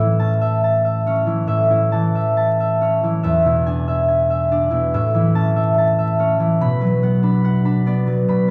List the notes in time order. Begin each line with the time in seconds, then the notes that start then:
Already playing: A2 C#4 E4 C#5 E5 A5
0.00 E3
0.19 C#4 A5
0.41 E5
0.64 A5
0.85 E5
1.06 C#4 C#5
1.26 E3 E4
1.47 A2 E5
1.70 C#4 E4
1.92 E3 A5
2.15 E5
2.37 A5
2.60 E5
2.81 C#4 C#5
3.03 E3 E4
3.23 E2 E5
3.45 B2 E4
3.66 D4 G#5
3.88 E5
4.08 G#5
4.30 E5
4.51 D4 D5
4.71 B2 E4
4.94 A2 E5
5.14 E3 E4
5.35 C#4 A5
5.56 E5
5.78 A5
5.98 E5
6.19 C#4 C#5
6.39 E3 E4
6.61 B2 B5
6.81 F#3 B4
7.03 B3 F#5
7.23 D4 B5
7.44 F#5
7.65 D4 B5
7.86 B3 D5
8.07 F#3 B4
8.28 B2 B5